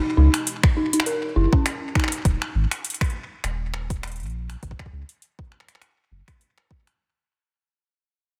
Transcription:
0.17 0.28 C#2 medium
0.17 0.30 D#4 medium
0.34 finger snap medium
0.34 closed hi-hat medium
0.47 closed hi-hat medium
0.63 finger snap medium
0.63 kick loud
0.77 0.90 D#4 medium
0.93 0.99 D#4 medium
0.93 closed hi-hat medium
1.00 finger snap medium
1.06 1.19 A#4 medium
1.06 closed hi-hat medium
1.36 1.47 F#1 medium
1.36 1.49 E4 medium
1.53 1.65 C#4 medium
1.53 kick loud
1.66 finger snap medium
1.66 closed hi-hat medium
1.95 2.08 D#4 medium
1.95 finger snap medium
1.95 kick loud
2.00 finger snap medium
2.04 finger snap soft
2.08 finger snap soft
2.12 closed hi-hat medium
2.25 2.36 D#1 loud
2.25 kick loud
2.25 closed hi-hat medium
2.42 finger snap soft
2.55 2.66 G#1 medium
2.71 finger snap soft
2.71 closed hi-hat medium
2.85 closed hi-hat medium
2.90 closed hi-hat soft
2.94 closed hi-hat soft
3.01 finger snap medium
3.01 kick loud
3.01 closed hi-hat soft
3.04 closed hi-hat soft
3.10 closed hi-hat soft
3.44 4.21 D#1 medium
3.44 finger snap soft
3.44 closed hi-hat medium
3.74 finger snap soft
3.90 kick loud
3.90 closed hi-hat medium
4.03 finger snap medium
4.03 closed hi-hat soft
4.07 closed hi-hat soft
4.12 closed hi-hat soft
4.16 closed hi-hat soft
4.20 4.56 A#1 medium
4.20 closed hi-hat soft
4.23 closed hi-hat soft
4.26 closed hi-hat soft
4.30 closed hi-hat soft
4.50 finger snap soft
4.50 closed hi-hat medium
4.63 4.74 G#1 medium
4.63 kick loud
4.63 closed hi-hat soft
4.71 kick medium
4.79 finger snap soft
4.79 kick medium
4.86 kick medium
4.92 5.03 C#2 medium
5.09 closed hi-hat medium
5.22 closed hi-hat medium
5.39 kick loud
5.52 finger snap soft
5.60 finger snap soft
5.68 finger snap soft
5.68 closed hi-hat medium
5.75 finger snap soft
5.82 finger snap soft
5.82 closed hi-hat soft
6.11 6.22 F#1 loud
6.28 finger snap medium
6.28 kick loud
6.28 closed hi-hat medium
6.41 closed hi-hat soft
6.58 finger snap soft
6.71 kick loud
6.87 finger snap soft
6.87 closed hi-hat medium

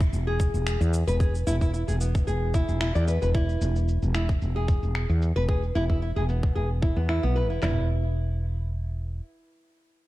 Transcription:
0.01 kick loud
0.01 shaker soft
0.13 0.50 E1 medium
0.13 shaker soft
0.27 0.79 G#4 medium
0.40 kick medium
0.40 shaker medium
0.54 0.76 E1 medium
0.54 shaker soft
0.67 finger snap medium
0.67 shaker soft
0.81 1.02 E2 medium
0.81 shaker soft
0.94 shaker medium
1.07 1.43 E1 medium
1.07 1.15 B4 medium
1.07 shaker soft
1.20 1.33 G#4 medium
1.20 kick loud
1.20 shaker soft
1.35 shaker soft
1.47 1.84 E1 medium
1.47 1.55 E4 loud
1.47 shaker medium
1.61 1.72 E4 medium
1.61 kick medium
1.61 shaker soft
1.74 1.82 E4 medium
1.74 shaker soft
1.88 2.24 E1 medium
1.88 1.95 G#4 medium
1.88 shaker soft
2.00 2.26 B3 medium
2.00 shaker medium
2.15 kick loud
2.15 shaker soft
2.27 2.64 E1 medium
2.27 2.53 G#4 medium
2.27 shaker soft
2.54 2.79 E4 loud
2.54 kick loud
2.54 shaker medium
2.69 2.90 E1 medium
2.69 shaker soft
2.81 2.94 E4 medium
2.81 finger snap medium
2.81 shaker soft
2.95 3.17 E2 medium
2.95 3.06 D5 medium
2.95 shaker soft
3.08 3.20 B4 medium
3.08 shaker medium
3.22 3.58 E1 medium
3.22 3.29 B4 medium
3.22 shaker soft
3.34 3.87 E4 medium
3.34 kick loud
3.34 shaker soft
3.49 shaker soft
3.61 3.98 E1 medium
3.61 shaker medium
3.76 shaker soft
3.88 shaker soft
4.02 4.38 E1 medium
4.02 shaker soft
4.15 4.28 E4 medium
4.15 finger snap medium
4.15 shaker medium
4.29 kick loud
4.29 shaker soft
4.42 4.79 E1 medium
4.42 shaker soft
4.56 5.08 G#4 medium
4.68 kick loud
4.68 shaker medium
4.83 5.04 E1 medium
4.83 shaker soft
4.95 finger snap medium
4.95 shaker soft
5.09 5.31 E2 medium
5.09 shaker soft
5.22 shaker medium
5.36 5.72 E1 medium
5.36 5.43 B4 loud
5.36 shaker soft
5.49 5.62 G#4 medium
5.49 kick loud
5.49 shaker soft
5.63 shaker soft
5.75 6.12 E1 medium
5.75 5.83 E4 medium
5.75 shaker medium
5.89 6.01 E4 medium
5.89 kick medium
5.89 shaker soft
6.02 6.10 E4 medium
6.02 shaker soft
6.16 6.52 E1 medium
6.16 6.23 G#4 medium
6.16 shaker soft
6.29 6.54 B3 medium
6.29 shaker medium
6.43 kick medium
6.43 shaker soft
6.55 6.93 E1 medium
6.55 6.68 G#4 medium
6.55 shaker soft
6.82 6.95 E4 medium
6.82 kick loud
6.82 shaker medium
6.96 7.18 E2 medium
6.96 7.08 B3 medium
6.96 shaker soft
7.09 7.22 E4 medium
7.09 finger snap medium
7.09 shaker soft
7.23 7.50 B1 medium
7.23 7.35 B3 medium
7.23 shaker soft
7.36 7.49 B4 medium
7.36 shaker medium
7.50 7.61 E1 medium
7.50 7.61 E4 medium
7.50 shaker soft
7.62 9.19 E1 medium
7.62 7.87 E4 medium
7.62 snare medium
7.62 clap medium
7.62 floor tom medium

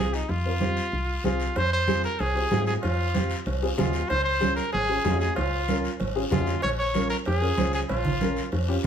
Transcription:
0.00 0.23 C2 loud
0.00 0.14 C4 medium
0.00 0.14 F4 medium
0.00 0.14 G#4 medium
0.00 0.16 G#4 medium
0.14 0.31 D#4 medium
0.14 short guiro medium
0.29 0.80 F2 loud
0.29 1.25 F4 medium
0.29 high conga soft
0.29 long guiro medium
0.45 0.51 C4 medium
0.45 0.51 F4 medium
0.45 0.51 A#4 medium
0.60 0.83 C4 medium
0.60 0.83 F4 medium
0.60 0.83 G4 medium
0.60 high conga medium
0.60 short guiro medium
0.77 short guiro medium
0.92 1.18 C2 medium
0.92 high conga soft
0.92 long guiro medium
1.24 1.50 C2 loud
1.24 1.41 C4 medium
1.24 1.41 F4 medium
1.24 1.59 F4 medium
1.24 1.41 G#4 medium
1.24 high conga medium
1.24 short guiro medium
1.40 short guiro medium
1.56 2.07 F2 loud
1.56 1.72 C5 loud
1.56 cowbell loud
1.56 high conga soft
1.56 long guiro medium
1.73 2.02 C5 loud
1.87 2.04 C4 medium
1.87 2.04 F4 medium
1.87 2.04 G#4 medium
1.87 high conga medium
1.87 short guiro medium
2.03 2.22 A#4 medium
2.03 short guiro medium
2.19 2.45 C2 loud
2.19 2.66 G#4 medium
2.19 cowbell medium
2.19 high conga soft
2.19 long guiro medium
2.35 2.41 C4 medium
2.35 2.41 F4 medium
2.35 2.41 G4 medium
2.51 2.77 G#2 medium
2.51 2.73 C4 medium
2.51 2.73 F4 medium
2.51 2.73 G#4 medium
2.51 high conga medium
2.51 low timbale medium
2.51 short guiro medium
2.67 2.74 G#4 medium
2.67 short guiro medium
2.83 3.34 F2 loud
2.83 3.42 F4 medium
2.83 cowbell loud
2.83 high conga soft
2.83 long guiro medium
3.14 3.31 C4 medium
3.14 3.31 F4 medium
3.14 3.31 G4 medium
3.14 high conga medium
3.14 short guiro medium
3.30 short guiro medium
3.46 3.72 C2 loud
3.46 cowbell medium
3.46 high conga soft
3.46 long guiro medium
3.62 3.68 C4 medium
3.62 3.68 F4 medium
3.62 3.68 G#4 medium
3.77 4.03 D#2 medium
3.77 4.00 C4 medium
3.77 4.00 F4 medium
3.77 4.10 F4 medium
3.77 4.00 G#4 medium
3.77 high conga medium
3.77 low conga medium
3.77 low timbale medium
3.77 short guiro medium
3.93 short guiro medium
4.08 4.61 C#2 medium
4.08 4.24 C5 loud
4.08 cowbell loud
4.08 high conga soft
4.08 long guiro medium
4.24 4.54 C5 loud
4.40 4.57 C#4 medium
4.40 4.57 F4 medium
4.40 4.58 G#4 medium
4.40 high conga medium
4.40 short guiro medium
4.56 4.71 A#4 medium
4.56 short guiro medium
4.72 4.99 G#1 loud
4.72 5.17 G#4 loud
4.72 cowbell medium
4.72 high conga soft
4.72 long guiro medium
4.88 4.94 C#4 medium
4.88 4.94 F4 medium
4.88 4.94 G#4 medium
5.04 5.30 F2 medium
5.04 5.27 C#4 medium
5.04 5.27 F4 medium
5.04 5.27 G#4 medium
5.04 high conga medium
5.04 low timbale medium
5.04 short guiro medium
5.20 5.35 G#4 medium
5.20 short guiro medium
5.36 5.88 C#2 medium
5.36 5.95 F4 medium
5.36 cowbell loud
5.36 high conga soft
5.36 long guiro medium
5.68 5.84 C#4 medium
5.68 5.85 F4 medium
5.68 5.85 A#4 medium
5.68 high conga medium
5.68 short guiro medium
5.84 short guiro medium
6.00 6.25 G#1 loud
6.00 cowbell medium
6.00 high conga soft
6.00 long guiro medium
6.15 6.21 C#4 medium
6.15 6.21 F4 medium
6.15 6.21 G#4 medium
6.30 6.56 F2 medium
6.30 6.53 C#4 medium
6.30 6.53 F4 medium
6.30 6.61 F4 medium
6.30 6.53 G#4 medium
6.30 high conga medium
6.30 low conga medium
6.30 low timbale medium
6.30 short guiro medium
6.47 short guiro medium
6.62 7.14 A#1 loud
6.62 6.70 C#5 loud
6.62 cowbell loud
6.62 high conga soft
6.62 long guiro medium
6.79 7.08 C#5 loud
6.94 7.11 C#4 medium
6.94 7.11 F4 medium
6.94 7.11 A#4 medium
6.94 high conga medium
6.94 short guiro medium
7.10 7.17 A#4 medium
7.10 short guiro medium
7.25 7.52 F2 loud
7.25 7.71 G#4 medium
7.25 cowbell medium
7.25 high conga soft
7.25 long guiro medium
7.40 7.47 C#4 medium
7.40 7.47 F4 medium
7.40 7.47 A#4 medium
7.57 7.83 C#2 medium
7.57 7.79 C#4 medium
7.57 7.80 F4 medium
7.57 7.80 C5 medium
7.57 high conga medium
7.57 short guiro medium
7.73 7.81 G#4 medium
7.73 short guiro medium
7.89 8.40 A#1 loud
7.89 8.48 F4 medium
7.89 cowbell loud
7.89 high conga soft
7.89 long guiro medium
8.05 low conga medium
8.21 8.38 C#4 medium
8.21 8.38 F4 medium
8.21 8.38 A#4 medium
8.21 high conga medium
8.21 short guiro medium
8.36 short guiro medium
8.52 8.78 F2 loud
8.52 cowbell medium
8.52 high conga soft
8.52 long guiro medium
8.68 8.74 C#4 medium
8.68 8.74 F4 medium
8.68 8.74 G4 medium
8.83 8.87 C#4 medium
8.83 short guiro medium

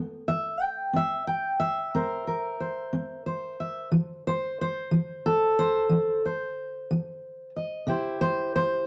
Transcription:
0.00 0.55 C4 medium
0.28 0.61 E5 medium
0.61 0.94 G5 medium
0.93 1.53 C4 medium
0.93 1.27 E5 medium
1.27 1.59 G5 medium
1.60 3.58 E5 medium
1.95 2.54 C4 medium
1.95 2.26 A#4 soft
1.95 2.60 C5 soft
2.27 3.88 A#4 soft
2.60 3.26 C5 soft
2.93 3.52 C4 medium
3.26 4.27 C5 soft
3.60 3.89 E5 soft
3.92 4.51 F3 medium
4.27 4.59 C5 medium
4.61 5.58 C5 medium
4.91 5.51 F3 medium
5.26 6.24 A4 medium
5.59 6.24 C5 medium
5.89 6.49 F3 medium
6.25 7.88 C5 soft
6.91 7.49 F3 medium
7.56 7.85 D#5 soft
7.87 8.47 C3 medium
7.87 8.87 E4 soft
7.87 8.87 G4 soft
7.87 8.21 C5 soft
8.21 8.54 C5 medium
8.56 8.87 C5 medium

